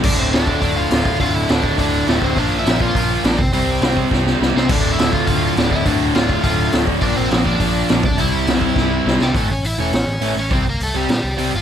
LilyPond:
<<
  \new Staff \with { instrumentName = "Overdriven electric guitar" } { \time 4/4 \key d \minor \tempo 4 = 206 <d' d''>8 <c' c''>8 <d' d''>4 <d' d''>8 <f' f''>4. | <f' f''>8 <e' e''>8 <d' d''>4 <d' d''>4 <a a'>8 <c' c''>8 | <d' d''>8. <e' e''>8. <f' f''>4. <d' d''>8 <c' c''>8 | <c' c''>2 r4. <c' c''>8 |
<d' d''>8. <e' e''>8. <f' f''>8 <f' f''>4 <d' d''>8 <e' e''>8 | <d' d''>4 <f' f''>4 <f' f''>4. r8 | <d' d''>8 <c' c''>4 <d' d''>2 <d' d''>8 | <e' e''>2.~ <e' e''>8 <g g'>8 |
<a a'>8 <cis' cis''>8 <e' e''>8 <cis' cis''>2 <cis' cis''>8 | <c' c''>8 <bes bes'>8 <a a'>8 <g g'>8 <g g'>4. <f f'>8 | }
  \new Staff \with { instrumentName = "Distorted electric guitar" } { \clef bass \time 4/4 \key d \minor <d, a, d>4 <d, a, d>4 <d, a, d>4 <d, a, d>4 | <d, a, d>4 <d, a, d>4 <d, a, d>4 <d, a, d>4 | <bes, f bes>4 <bes, f bes>4 <bes, f bes>4 <bes, f bes>8 r8 | <c g c'>4 <c g c'>4 <c g c'>4 <c g c'>4 |
<d, a, d>4 <d, a, d>4 <d, a, d>4 <d, a, d>4 | <d, a, d>4 <d, a, d>4 <d, a, d>4 <d, a, d>4 | <bes, f bes>4 <bes, f bes>4 <bes, f bes>4 <bes, f bes>8 r8 | <c g c'>4 <c g c'>4 <c g c'>4 <c g c'>4 |
<a, e a>8 r4 <a, e a>8 r4 <a, e a>8 r8 | <c g c'>8 r4 <c g c'>8 r4 <c g c'>8 r8 | }
  \new Staff \with { instrumentName = "Distorted electric guitar" } { \clef bass \time 4/4 \key d \minor <d, a, d>4 <d, a, d>4 <d, a, d>4 <d, a, d>4 | <d, a, d>4 <d, a, d>4 <d, a, d>4 <d, a, d>4 | <bes, f bes>4 <bes, f bes>4 <bes, f bes>4 <bes, f bes>8 r8 | <c g c'>4 <c g c'>4 <c g c'>4 <c g c'>4 |
<d, a, d>4 <d, a, d>4 <d, a, d>4 <d, a, d>4 | <d, a, d>4 <d, a, d>4 <d, a, d>4 <d, a, d>4 | <bes, f bes>4 <bes, f bes>4 <bes, f bes>4 <bes, f bes>8 r8 | <c g c'>4 <c g c'>4 <c g c'>4 <c g c'>4 |
<a, e a>8 r4 <a, e a>8 r4 <a, e a>8 r8 | <c g c'>8 r4 <c g c'>8 r4 <c g c'>8 r8 | }
  \new Staff \with { instrumentName = "Distorted electric guitar" } { \clef bass \time 4/4 \key d \minor r1 | r1 | r1 | r1 |
<d, a, d>1 | <d, a, d>1 | <bes, f bes>2.~ <bes, f bes>8 <c g c'>8~ | <c g c'>2.~ <c g c'>8 r8 |
r1 | r1 | }
  \new Staff \with { instrumentName = "Picked electric bass" } { \clef bass \time 4/4 \key d \minor d,,8 d,,8 d,,4 d,,4 d,,8 d,,8 | d,,8 d,,8 d,,4 d,,4 d,,8 d,,8 | bes,,8 bes,,8 bes,,4 bes,,4 bes,,8 c,8 | c,8 c,8 c,4 c,4 c,8 c,8 |
d,,8 d,,8 d,,4 d,,4 d,,8 d,,8 | d,,8 d,,8 d,,4 d,,4 d,,8 d,,8 | bes,,8 bes,,8 bes,,4 bes,,4 bes,,8 c,8 | c,8 c,8 c,4 c,4 c,8 c,8 |
a,,8 a,,8 a,,8 e,,8 a,,8 a,,8 a,,8 a,,8 | c,8 c,8 c,8 c,8 bes,8 c,8 c,8 g,,8 | }
  \new DrumStaff \with { instrumentName = "Drums" } \drummode { \time 4/4 <cymc bd>4 <hho sn>8 bd8 <hho bd>4 <hho sn>8 bd8 | <hho bd>4 <hho sn>8 bd8 <hho bd>4 <hho sn>8 bd8 | <hho bd>4 <hho sn>8 bd8 <hho bd>4 <hho sn>8 bd8 | hho4 <hho sn>8 bd8 <bd sn>8 sn8 sn8 sn8 |
<cymc hho bd>4 <hho sn>8 bd8 <hho bd>4 <hho sn>8 bd8 | <hho bd>4 <hho sn>8 bd8 <hho bd>4 <hho sn>8 bd8 | <hho bd>4 <hho sn>8 bd8 <hho bd>4 <hho sn>8 bd8 | hho4 <hho sn>8 bd8 <bd sn>4 sn8 sn8 |
<hho bd>4 hho4 <hho sn>4 hho4 | <hho bd>4 hho4 <hho sn>4 hho4 | }
>>